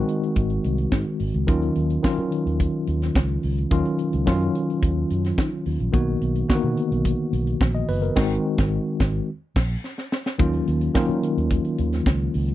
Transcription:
Already playing: tine electric piano D#3 G#3 C4 F#4
0.09 closed hi-hat
0.23 closed hi-hat
0.36 fingered electric bass G#1, kick, closed hi-hat
0.50 closed hi-hat
0.64 fingered electric bass C2, closed hi-hat
0.78 closed hi-hat
0.92 fingered electric bass G#2, kick, snare
1.20 fingered electric bass G#1, open hi-hat
1.34 fingered electric bass C#2, closed hi-hat
1.47 fingered electric bass D#2, tine electric piano D#3 F#3 C#4 F4, kick, closed hi-hat
1.62 closed hi-hat
1.75 fingered electric bass D#2, closed hi-hat
1.90 closed hi-hat
2.03 tine electric piano D#3 F#3 C#4 F4, kick, snare
2.17 fingered electric bass D#3, closed hi-hat
2.32 closed hi-hat
2.46 fingered electric bass D#2, closed hi-hat
2.60 kick, closed hi-hat
2.87 fingered electric bass D#2, closed hi-hat
3.02 snare, closed hi-hat
3.15 fingered electric bass C#2, kick, snare
3.43 fingered electric bass C#2, open hi-hat
3.58 closed hi-hat
3.71 fingered electric bass D#2, tine electric piano D#3 F#3 C#4 F4, kick, closed hi-hat
3.85 closed hi-hat
3.99 closed hi-hat
4.13 fingered electric bass C#2, closed hi-hat
4.26 fingered electric bass F#2, tine electric piano D#3 F#3 C#4 F4, kick, snare
4.41 closed hi-hat
4.55 closed hi-hat
4.70 closed hi-hat
4.82 fingered electric bass D#2, kick, closed hi-hat
5.10 fingered electric bass F#2, closed hi-hat
5.25 snare, closed hi-hat
5.38 fingered electric bass D#3, kick, snare
5.66 fingered electric bass D#2, open hi-hat
5.80 fingered electric bass A#1, closed hi-hat
5.92 fingered electric bass B1, tine electric piano D#3 A#3 B3 F#4, kick, closed hi-hat
6.21 fingered electric bass B1, closed hi-hat
6.35 closed hi-hat
6.48 tine electric piano D3 A#3 B3 F#4, kick, snare
6.55 tine electric piano D#3
6.64 fingered electric bass B2
6.77 closed hi-hat
6.92 fingered electric bass B1, closed hi-hat
7.05 kick, closed hi-hat
7.33 fingered electric bass B1, closed hi-hat
7.47 closed hi-hat
7.61 fingered electric bass A#1, kick, snare
7.74 tine electric piano D#5, closed hi-hat
7.88 fingered electric bass F#1, tine electric piano B4, open hi-hat
8.02 tine electric piano A#4, closed hi-hat
8.15 fingered electric bass G#1, tine electric piano D#3 G#3 C4 F#4, kick, snare, crash
8.58 fingered electric bass G#1, kick, snare
9.00 fingered electric bass G#1, kick, snare
9.56 fingered electric bass A#1, kick, snare, crash
9.84 snare
9.98 snare
10.12 snare
10.26 snare
10.39 fingered electric bass D#2, tine electric piano D#3 F#3 A#3 C#4 F4, kick, closed hi-hat
10.53 closed hi-hat
10.67 fingered electric bass D#2, closed hi-hat
10.81 closed hi-hat
10.94 tine electric piano D#3 F#3 A#3 C#4 F4, kick, snare
11.08 fingered electric bass D#3, closed hi-hat
11.23 closed hi-hat
11.37 fingered electric bass D#2, closed hi-hat
11.50 kick, closed hi-hat
11.64 closed hi-hat
11.78 fingered electric bass D#2, closed hi-hat
11.93 snare, closed hi-hat
12.06 fingered electric bass C#2, kick, snare
12.20 closed hi-hat
12.34 fingered electric bass C#2, open hi-hat
12.48 closed hi-hat

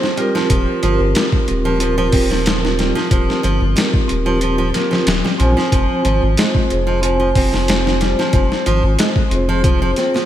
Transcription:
Already playing: nylon-string guitar F3, vibraphone C4 F4 G#4 C5
0.03 snare
0.16 nylon-string guitar G3, vibraphone C4 F4 G4, closed hi-hat
0.20 vibraphone A#4
0.35 nylon-string guitar F3, snare
0.50 analog synth bass D#1, nylon-string guitar F3, kick, closed hi-hat
0.83 analog synth bass G1, nylon-string guitar F3, closed hi-hat
1.00 analog synth bass G1
1.15 nylon-string guitar G3, snare, closed hi-hat
1.32 kick
1.48 analog synth bass D#1, vibraphone C4 F4 G4 A#4, closed hi-hat
1.65 nylon-string guitar F3
1.80 nylon-string guitar F3, vibraphone C4 F4 G4, closed hi-hat
1.84 vibraphone A#4
1.98 nylon-string guitar F3
2.12 analog synth bass D#1, nylon-string guitar C4, kick, open hi-hat
2.30 nylon-string guitar F3, snare
2.46 snare, closed hi-hat
2.65 snare
2.79 nylon-string guitar G3, snare, closed hi-hat
2.95 nylon-string guitar F3, snare
3.11 analog synth bass D#1, nylon-string guitar F3, kick, closed hi-hat
3.30 snare
3.43 analog synth bass G1, nylon-string guitar F3, closed hi-hat
3.62 analog synth bass G1
3.76 nylon-string guitar G3, snare, closed hi-hat
3.94 kick
4.08 analog synth bass D#1, vibraphone C4 F4 G4 A#4, closed hi-hat
4.26 nylon-string guitar F3
4.41 nylon-string guitar F3, closed hi-hat
4.58 nylon-string guitar F3
4.74 nylon-string guitar A#3, snare, closed hi-hat
4.91 nylon-string guitar F3, snare
5.07 analog synth bass D#1, snare, closed hi-hat
5.24 nylon-string guitar G3, snare
5.38 analog synth bass A#1, nylon-string guitar F3, vibraphone C4 F4 G#5, closed hi-hat
5.42 vibraphone C5
5.57 nylon-string guitar F3, snare
5.72 analog synth bass F1, nylon-string guitar F3, kick, closed hi-hat
6.05 analog synth bass G#1, nylon-string guitar F3, closed hi-hat
6.23 analog synth bass G#1
6.37 nylon-string guitar G#3, snare, closed hi-hat
6.55 kick
6.70 analog synth bass F1, vibraphone C4 F4 G#4 C5, closed hi-hat
6.87 nylon-string guitar F3
7.02 nylon-string guitar F3, vibraphone C4 F4 C5 G#5, closed hi-hat
7.20 nylon-string guitar F3
7.35 analog synth bass F1, nylon-string guitar C4, kick, open hi-hat
7.53 nylon-string guitar F3, snare
7.68 snare, closed hi-hat
7.87 snare
8.01 nylon-string guitar G3, snare, closed hi-hat
8.19 nylon-string guitar F3, snare
8.33 analog synth bass F1, nylon-string guitar F3, kick, closed hi-hat
8.52 snare
8.66 analog synth bass G#1, nylon-string guitar F3, closed hi-hat
8.84 analog synth bass G#1
8.99 nylon-string guitar G#3, snare, closed hi-hat
9.16 kick
9.30 analog synth bass F1, vibraphone C4 F4 G#4, closed hi-hat
9.34 vibraphone C5
9.49 nylon-string guitar F3
9.64 nylon-string guitar F3, kick, closed hi-hat
9.82 nylon-string guitar F3
9.96 nylon-string guitar C4, snare, closed hi-hat
10.14 nylon-string guitar F3, snare

